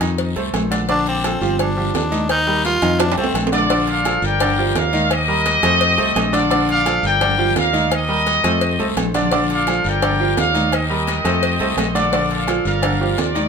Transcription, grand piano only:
0.01 D#3 D#4 D#5
0.36 A3 A4 C5
0.71 D3 D4 D5
0.89 D3 D4 D5
1.24 F3 F4 A4
1.41 F3 F4 G4
1.77 F3 F4 G4
2.11 D#3 D#4 D#5
2.47 G3 G4 A#4
2.82 D#3 D#4 D#5
3.18 A3 A4 C5
3.52 D3 D4 D5
3.70 D3 D4 D5
4.05 F3 F4 A4
4.41 D3 D4 D5
4.58 F3 F4 G4
4.93 D#3 D#4 D#5
5.28 G3 G4 A#4
5.63 A3 A4 C5
5.98 A3 A4 C5
6.33 D3 D4 D5
6.50 D3 D4 D5
6.86 F3 F4 A4
7.21 D3 D4 D5
7.38 F3 F4 G4
7.73 D#3 D#4 D#5
8.08 G3 G4 A#4
8.44 A3 A4 C5
8.79 A3 A4 C5
9.14 D3 D4 D5
9.32 D3 D4 D5
9.67 F3 F4 A4
10.02 D3 D4 D5
10.19 F3 F4 G4
10.54 D#3 D#4 D#5
10.90 G3 G4 A#4
11.25 A3 A4 C5
11.60 A3 A4 C5
11.95 D3 D4 D5
12.13 D3 D4 D5
12.47 F3 F4 A4
12.82 D3 D4 D5
13.00 F3 F4 G4
13.35 D#3 D#4 D#5

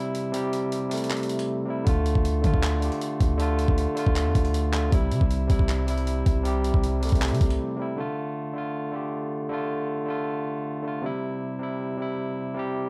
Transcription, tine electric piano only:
Already playing: C3 G3 E4
0.32 C3 G3
0.36 G4
0.89 C3 G3
0.93 A3
1.66 C3 G3
1.70 E4
1.84 D3 A3
1.89 F4
2.42 D3 A3
2.46 F4
2.80 D3 A3
2.84 G4
3.37 D3 A3
3.42 F4
3.94 D3 A3
3.99 F4
4.72 D3 A3
4.76 F4
4.90 C3 G3
4.94 E4
5.47 C3 G3
5.51 E4
5.86 C3 G3
5.90 E4
6.43 C3 G3
6.48 G4
7.00 C3 G3
7.05 A3
7.77 C3 G3
7.82 E4
7.96 D3 A3
8.00 F4
8.54 D3 A3
8.58 F4
8.91 D3 A3
8.96 G4
9.49 D3 A3
9.53 F4
10.06 D3 A3
10.10 F4
10.83 D3 A3
10.88 F4
11.02 C3 G3
11.06 E4
11.59 C3 G3
11.63 E4
11.97 C3 G3
12.02 E4
12.55 C3 G3
12.59 G4

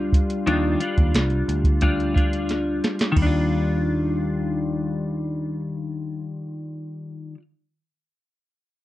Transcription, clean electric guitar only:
Already playing: G3 D4 F4
0.47 D#3 G3 D4 F4
0.80 G3 D4 F4
1.82 G3 D4 F4
2.14 G3 D4 F4
3.12 D#3
3.18 G3
3.22 D4
3.27 F4

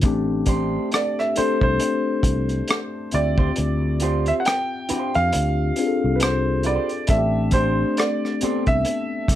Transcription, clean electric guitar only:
0.47 D4 G4 C5
0.92 muted clean electric guitar stroke
1.37 D4 G4 C5
3.39 F4 G4 C5
4.02 F4 G4 C5
4.45 muted clean electric guitar stroke
4.89 F4 G4 C5
6.21 muted clean electric guitar stroke
6.65 F4 G4 C5
7.54 D4 G4 C5
7.98 muted clean electric guitar stroke
8.43 D4 G4 C5

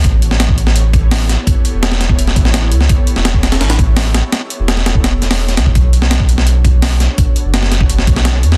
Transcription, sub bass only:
0.04 A1
1.74 E1
2.36 A1
2.72 C#2
3.16 E1
3.61 A1
3.79 A1
4.59 E1
5.22 E1
5.58 C#2
5.75 B1
7.45 F#1
8.07 B1
8.43 E2

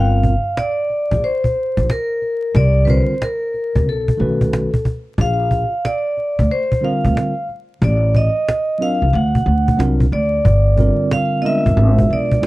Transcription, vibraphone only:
Already playing: F5
0.59 D5
1.24 C5
1.91 A#4
2.56 D5
2.85 B4
2.90 C5
3.23 A#4
3.89 A4
5.21 F5
5.86 D5
6.51 C5
6.85 F5
7.84 D5
8.17 D#5
8.82 F5
9.15 F#5
10.13 D5
11.13 F5
11.42 D#5
11.46 E5
12.13 D5

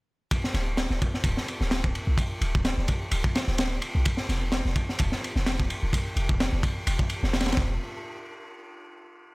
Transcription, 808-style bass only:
0.54 D1
0.90 D1
1.24 D1
1.61 D1
2.07 B1
2.41 D1
2.78 D1
3.12 D1
3.48 D1
3.95 B1
4.29 E1
4.65 E1
5.00 E1
5.36 E1
5.83 D1
6.16 E1
6.53 E1
6.87 E1
7.23 E1
7.57 E1

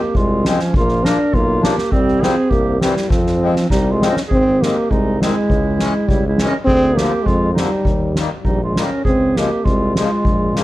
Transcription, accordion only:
0.47 F3 G#3 C4
1.04 F3 A#3 D4
1.62 F3 A#3 D4
2.21 F3 G3 C4
2.81 E3 G3 C4
3.42 F3 G#3 C4
4.01 F3 G#3 C4
4.63 D#3 G#3 C4
5.21 D#3 G#3 C4
5.80 E3 G#3 C#4
6.41 E3 G#3 C#4
7.00 D3 F3 A#3
7.56 D3 F3 A#3
8.17 D#3 G3 A#3
8.76 D#3 G3 A#3
9.37 C#3 F3 G#3
9.97 C#3 F3 G#3
10.56 C#3 F3 A#3

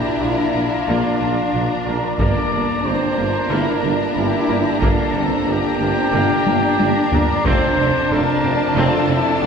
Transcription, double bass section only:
0.23 A#1
0.55 A#1
0.88 A#1
1.20 A#1
1.53 A#1
1.86 A#1
2.19 G1
2.51 G1
2.85 G1
3.18 G1
3.50 G1
3.83 G1
4.16 G1
4.49 G1
4.81 G1
5.14 G1
5.47 G1
5.80 G1
6.13 G1
6.47 G1
6.80 G1
7.14 G1
7.45 F1
7.78 F1
8.11 F1
8.43 F1
8.76 F1
9.09 F1
9.42 F1

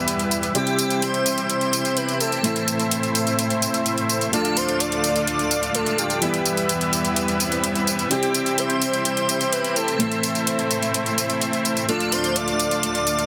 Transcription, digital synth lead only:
0.55 G4
1.02 C5
1.49 C5
1.97 B4
2.21 A4
4.33 A4
4.57 C5
4.80 D5
5.27 D5
5.75 A4
5.98 G4
8.11 G4
8.58 C5
9.06 C5
9.52 B4
9.76 A4
11.89 A4
12.12 C5
12.36 D5
12.83 D5

